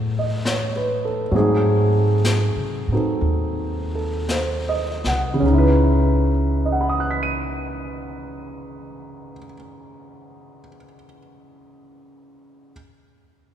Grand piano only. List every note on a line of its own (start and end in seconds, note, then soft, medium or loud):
0.00 1.30 F#3 soft
0.00 1.31 A3 soft
0.00 1.34 B3 soft
0.00 1.35 E4 soft
0.00 1.35 G#4 soft
0.19 0.63 D#5 soft
0.47 1.02 C#5 soft
0.76 1.21 B4 soft
1.05 1.51 A4 soft
1.31 5.42 F#3 soft
1.31 5.43 A3 soft
1.31 2.91 C4 soft
1.36 2.91 D#4 soft
1.36 5.44 G#4 medium
2.92 5.43 C4 soft
2.92 5.44 D#4 soft
2.92 5.44 F#4 soft
2.92 3.94 A4 soft
3.95 4.51 A4 soft
4.31 5.03 C5 soft
4.69 5.28 D#5 soft
5.07 5.68 F#5 soft
5.34 9.32 C#3 soft
5.40 9.38 C#4 soft
5.46 9.44 D#4 soft
5.53 9.51 E4 soft
5.58 9.56 B4 medium
6.65 10.60 D#5 soft
6.72 10.67 F#5 soft
6.81 10.75 B5 soft
6.89 10.84 D#6 soft
7.00 10.94 F#6 soft
7.11 11.05 B6 soft
7.23 11.17 D#7 soft